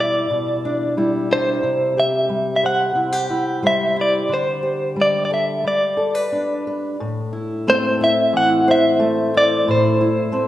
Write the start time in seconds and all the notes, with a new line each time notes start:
Already playing: B2 E3 G3 E4
0.00 D5
0.30 B2 E4
0.65 D4
0.97 G3 E4
1.31 D4 C5
1.63 C3
1.97 G4 E5
2.29 G3
2.56 E5
2.63 C5 F#5
2.95 C3 E4
3.12 G4
3.30 E4
3.63 G3 C5
3.67 E5
3.96 E4
4.01 D5
4.29 D3
4.34 C5
4.63 G4
4.96 G3
5.02 D5
5.25 D5
5.31 A4 E5
5.64 G3 D5
5.97 A4
6.15 B4
6.32 D4
6.67 B4
7.00 A2
7.33 E4
7.67 A3 C4 C5
8.01 E4 E5
8.33 E3 F#5
8.68 C5 E5
8.99 A3
9.34 E4 D5
9.68 A2 C5
10.01 E4
10.32 A3 C4